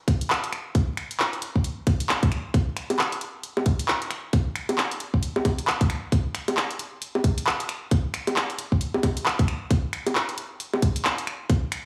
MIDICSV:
0, 0, Header, 1, 2, 480
1, 0, Start_track
1, 0, Tempo, 447761
1, 804, Time_signature, 4, 2, 24, 8
1, 12706, End_track
2, 0, Start_track
2, 0, Title_t, "Drums"
2, 83, Note_on_c, 9, 36, 108
2, 84, Note_on_c, 9, 42, 102
2, 190, Note_off_c, 9, 36, 0
2, 191, Note_off_c, 9, 42, 0
2, 229, Note_on_c, 9, 42, 62
2, 324, Note_on_c, 9, 39, 120
2, 336, Note_off_c, 9, 42, 0
2, 431, Note_off_c, 9, 39, 0
2, 468, Note_on_c, 9, 42, 47
2, 563, Note_off_c, 9, 42, 0
2, 563, Note_on_c, 9, 26, 64
2, 563, Note_on_c, 9, 42, 89
2, 670, Note_off_c, 9, 26, 0
2, 670, Note_off_c, 9, 42, 0
2, 803, Note_on_c, 9, 42, 61
2, 804, Note_on_c, 9, 36, 127
2, 910, Note_off_c, 9, 42, 0
2, 911, Note_off_c, 9, 36, 0
2, 1043, Note_on_c, 9, 26, 65
2, 1043, Note_on_c, 9, 42, 99
2, 1150, Note_off_c, 9, 26, 0
2, 1150, Note_off_c, 9, 42, 0
2, 1188, Note_on_c, 9, 42, 67
2, 1282, Note_on_c, 9, 39, 126
2, 1295, Note_off_c, 9, 42, 0
2, 1390, Note_off_c, 9, 39, 0
2, 1427, Note_on_c, 9, 42, 35
2, 1522, Note_off_c, 9, 42, 0
2, 1522, Note_on_c, 9, 42, 86
2, 1630, Note_off_c, 9, 42, 0
2, 1669, Note_on_c, 9, 36, 63
2, 1762, Note_on_c, 9, 42, 63
2, 1776, Note_off_c, 9, 36, 0
2, 1870, Note_off_c, 9, 42, 0
2, 2003, Note_on_c, 9, 36, 107
2, 2003, Note_on_c, 9, 42, 102
2, 2110, Note_off_c, 9, 42, 0
2, 2111, Note_off_c, 9, 36, 0
2, 2148, Note_on_c, 9, 42, 60
2, 2243, Note_on_c, 9, 39, 118
2, 2255, Note_off_c, 9, 42, 0
2, 2350, Note_off_c, 9, 39, 0
2, 2388, Note_on_c, 9, 42, 50
2, 2389, Note_on_c, 9, 36, 113
2, 2484, Note_off_c, 9, 42, 0
2, 2484, Note_on_c, 9, 26, 65
2, 2484, Note_on_c, 9, 42, 86
2, 2496, Note_off_c, 9, 36, 0
2, 2591, Note_off_c, 9, 26, 0
2, 2591, Note_off_c, 9, 42, 0
2, 2724, Note_on_c, 9, 36, 121
2, 2724, Note_on_c, 9, 42, 67
2, 2831, Note_off_c, 9, 36, 0
2, 2831, Note_off_c, 9, 42, 0
2, 2964, Note_on_c, 9, 26, 61
2, 2964, Note_on_c, 9, 42, 102
2, 3071, Note_off_c, 9, 26, 0
2, 3071, Note_off_c, 9, 42, 0
2, 3109, Note_on_c, 9, 42, 67
2, 3109, Note_on_c, 9, 60, 87
2, 3203, Note_on_c, 9, 39, 116
2, 3217, Note_off_c, 9, 42, 0
2, 3217, Note_off_c, 9, 60, 0
2, 3310, Note_off_c, 9, 39, 0
2, 3348, Note_on_c, 9, 42, 36
2, 3443, Note_off_c, 9, 42, 0
2, 3443, Note_on_c, 9, 42, 86
2, 3551, Note_off_c, 9, 42, 0
2, 3683, Note_on_c, 9, 42, 64
2, 3790, Note_off_c, 9, 42, 0
2, 3827, Note_on_c, 9, 60, 83
2, 3922, Note_on_c, 9, 42, 101
2, 3924, Note_on_c, 9, 36, 97
2, 3934, Note_off_c, 9, 60, 0
2, 4029, Note_off_c, 9, 42, 0
2, 4031, Note_off_c, 9, 36, 0
2, 4068, Note_on_c, 9, 42, 63
2, 4162, Note_on_c, 9, 39, 110
2, 4175, Note_off_c, 9, 42, 0
2, 4269, Note_off_c, 9, 39, 0
2, 4307, Note_on_c, 9, 42, 50
2, 4401, Note_off_c, 9, 42, 0
2, 4401, Note_on_c, 9, 26, 64
2, 4401, Note_on_c, 9, 42, 81
2, 4508, Note_off_c, 9, 26, 0
2, 4508, Note_off_c, 9, 42, 0
2, 4642, Note_on_c, 9, 42, 64
2, 4643, Note_on_c, 9, 36, 117
2, 4749, Note_off_c, 9, 42, 0
2, 4751, Note_off_c, 9, 36, 0
2, 4883, Note_on_c, 9, 26, 64
2, 4883, Note_on_c, 9, 42, 109
2, 4990, Note_off_c, 9, 26, 0
2, 4990, Note_off_c, 9, 42, 0
2, 5028, Note_on_c, 9, 42, 70
2, 5028, Note_on_c, 9, 60, 84
2, 5122, Note_on_c, 9, 39, 116
2, 5136, Note_off_c, 9, 42, 0
2, 5136, Note_off_c, 9, 60, 0
2, 5229, Note_off_c, 9, 39, 0
2, 5268, Note_on_c, 9, 42, 39
2, 5363, Note_off_c, 9, 42, 0
2, 5363, Note_on_c, 9, 42, 88
2, 5470, Note_off_c, 9, 42, 0
2, 5508, Note_on_c, 9, 36, 57
2, 5603, Note_on_c, 9, 42, 66
2, 5615, Note_off_c, 9, 36, 0
2, 5710, Note_off_c, 9, 42, 0
2, 5747, Note_on_c, 9, 60, 76
2, 5843, Note_off_c, 9, 60, 0
2, 5843, Note_on_c, 9, 36, 99
2, 5843, Note_on_c, 9, 42, 104
2, 5843, Note_on_c, 9, 60, 78
2, 5950, Note_off_c, 9, 36, 0
2, 5950, Note_off_c, 9, 42, 0
2, 5950, Note_off_c, 9, 60, 0
2, 5988, Note_on_c, 9, 42, 65
2, 6082, Note_on_c, 9, 39, 108
2, 6095, Note_off_c, 9, 42, 0
2, 6190, Note_off_c, 9, 39, 0
2, 6227, Note_on_c, 9, 42, 52
2, 6228, Note_on_c, 9, 36, 99
2, 6323, Note_off_c, 9, 42, 0
2, 6323, Note_on_c, 9, 26, 61
2, 6323, Note_on_c, 9, 42, 89
2, 6335, Note_off_c, 9, 36, 0
2, 6430, Note_off_c, 9, 26, 0
2, 6430, Note_off_c, 9, 42, 0
2, 6562, Note_on_c, 9, 42, 64
2, 6563, Note_on_c, 9, 36, 109
2, 6670, Note_off_c, 9, 36, 0
2, 6670, Note_off_c, 9, 42, 0
2, 6802, Note_on_c, 9, 26, 64
2, 6802, Note_on_c, 9, 42, 106
2, 6910, Note_off_c, 9, 26, 0
2, 6910, Note_off_c, 9, 42, 0
2, 6947, Note_on_c, 9, 42, 72
2, 6947, Note_on_c, 9, 60, 78
2, 7042, Note_on_c, 9, 39, 107
2, 7054, Note_off_c, 9, 42, 0
2, 7054, Note_off_c, 9, 60, 0
2, 7149, Note_off_c, 9, 39, 0
2, 7188, Note_on_c, 9, 42, 39
2, 7283, Note_off_c, 9, 42, 0
2, 7283, Note_on_c, 9, 42, 90
2, 7390, Note_off_c, 9, 42, 0
2, 7523, Note_on_c, 9, 42, 68
2, 7630, Note_off_c, 9, 42, 0
2, 7668, Note_on_c, 9, 60, 77
2, 7763, Note_on_c, 9, 36, 99
2, 7763, Note_on_c, 9, 42, 104
2, 7775, Note_off_c, 9, 60, 0
2, 7870, Note_off_c, 9, 36, 0
2, 7871, Note_off_c, 9, 42, 0
2, 7909, Note_on_c, 9, 42, 70
2, 8004, Note_on_c, 9, 39, 111
2, 8016, Note_off_c, 9, 42, 0
2, 8111, Note_off_c, 9, 39, 0
2, 8149, Note_on_c, 9, 42, 55
2, 8243, Note_off_c, 9, 42, 0
2, 8243, Note_on_c, 9, 26, 64
2, 8243, Note_on_c, 9, 42, 93
2, 8351, Note_off_c, 9, 26, 0
2, 8351, Note_off_c, 9, 42, 0
2, 8483, Note_on_c, 9, 36, 113
2, 8483, Note_on_c, 9, 42, 67
2, 8590, Note_off_c, 9, 42, 0
2, 8591, Note_off_c, 9, 36, 0
2, 8724, Note_on_c, 9, 26, 69
2, 8724, Note_on_c, 9, 42, 113
2, 8831, Note_off_c, 9, 26, 0
2, 8831, Note_off_c, 9, 42, 0
2, 8868, Note_on_c, 9, 42, 70
2, 8868, Note_on_c, 9, 60, 77
2, 8964, Note_on_c, 9, 39, 113
2, 8976, Note_off_c, 9, 42, 0
2, 8976, Note_off_c, 9, 60, 0
2, 9071, Note_off_c, 9, 39, 0
2, 9110, Note_on_c, 9, 42, 37
2, 9204, Note_off_c, 9, 42, 0
2, 9204, Note_on_c, 9, 42, 92
2, 9311, Note_off_c, 9, 42, 0
2, 9349, Note_on_c, 9, 36, 61
2, 9444, Note_on_c, 9, 42, 65
2, 9456, Note_off_c, 9, 36, 0
2, 9551, Note_off_c, 9, 42, 0
2, 9589, Note_on_c, 9, 60, 74
2, 9684, Note_off_c, 9, 60, 0
2, 9684, Note_on_c, 9, 36, 92
2, 9684, Note_on_c, 9, 42, 113
2, 9684, Note_on_c, 9, 60, 76
2, 9791, Note_off_c, 9, 36, 0
2, 9791, Note_off_c, 9, 42, 0
2, 9791, Note_off_c, 9, 60, 0
2, 9829, Note_on_c, 9, 42, 65
2, 9923, Note_on_c, 9, 39, 110
2, 9936, Note_off_c, 9, 42, 0
2, 10030, Note_off_c, 9, 39, 0
2, 10069, Note_on_c, 9, 36, 103
2, 10069, Note_on_c, 9, 42, 55
2, 10164, Note_off_c, 9, 42, 0
2, 10164, Note_on_c, 9, 26, 67
2, 10164, Note_on_c, 9, 42, 97
2, 10176, Note_off_c, 9, 36, 0
2, 10271, Note_off_c, 9, 26, 0
2, 10271, Note_off_c, 9, 42, 0
2, 10404, Note_on_c, 9, 36, 120
2, 10404, Note_on_c, 9, 42, 66
2, 10511, Note_off_c, 9, 42, 0
2, 10512, Note_off_c, 9, 36, 0
2, 10644, Note_on_c, 9, 26, 70
2, 10644, Note_on_c, 9, 42, 106
2, 10752, Note_off_c, 9, 26, 0
2, 10752, Note_off_c, 9, 42, 0
2, 10789, Note_on_c, 9, 42, 68
2, 10789, Note_on_c, 9, 60, 79
2, 10884, Note_on_c, 9, 39, 115
2, 10897, Note_off_c, 9, 42, 0
2, 10897, Note_off_c, 9, 60, 0
2, 10991, Note_off_c, 9, 39, 0
2, 11029, Note_on_c, 9, 42, 36
2, 11124, Note_off_c, 9, 42, 0
2, 11124, Note_on_c, 9, 42, 93
2, 11232, Note_off_c, 9, 42, 0
2, 11364, Note_on_c, 9, 42, 65
2, 11471, Note_off_c, 9, 42, 0
2, 11509, Note_on_c, 9, 60, 75
2, 11604, Note_on_c, 9, 36, 104
2, 11604, Note_on_c, 9, 42, 109
2, 11616, Note_off_c, 9, 60, 0
2, 11711, Note_off_c, 9, 36, 0
2, 11711, Note_off_c, 9, 42, 0
2, 11749, Note_on_c, 9, 42, 67
2, 11843, Note_on_c, 9, 39, 121
2, 11856, Note_off_c, 9, 42, 0
2, 11951, Note_off_c, 9, 39, 0
2, 11989, Note_on_c, 9, 42, 51
2, 12084, Note_off_c, 9, 42, 0
2, 12084, Note_on_c, 9, 26, 65
2, 12084, Note_on_c, 9, 42, 93
2, 12191, Note_off_c, 9, 26, 0
2, 12191, Note_off_c, 9, 42, 0
2, 12323, Note_on_c, 9, 36, 123
2, 12323, Note_on_c, 9, 42, 61
2, 12430, Note_off_c, 9, 36, 0
2, 12430, Note_off_c, 9, 42, 0
2, 12562, Note_on_c, 9, 26, 71
2, 12562, Note_on_c, 9, 42, 109
2, 12669, Note_off_c, 9, 26, 0
2, 12669, Note_off_c, 9, 42, 0
2, 12706, End_track
0, 0, End_of_file